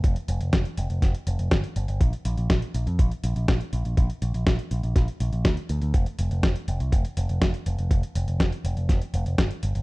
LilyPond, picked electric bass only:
\new Staff \with { instrumentName = "Picked electric bass" } { \clef bass \time 4/4 \key c \mixolydian \tempo 4 = 122 f,,16 r16 f,,16 f,,16 f,,16 r16 f,,16 f,,16 f,,16 r16 f,,16 f,,16 g,,16 r16 g,,16 g,,16 | bes,,16 r16 bes,,16 bes,,16 r8 bes,,16 f,16 bes,,16 r16 bes,,16 bes,,16 r8 bes,,16 bes,,16 | bes,,16 r16 bes,,16 bes,,16 r8 bes,,16 bes,,16 bes,,16 r16 bes,,16 bes,,16 d,16 r16 d,16 d,16 | f,,16 r16 f,,16 f,,16 f,,16 r16 f,,16 c,16 f,,16 r16 f,,16 f,,16 f,,16 r16 f,,16 f,,16 |
f,,16 r16 f,,16 f,,16 f,,16 r16 f,,16 f,,16 f,,16 r16 f,,16 f,,16 g,,16 r16 g,,16 g,,16 | }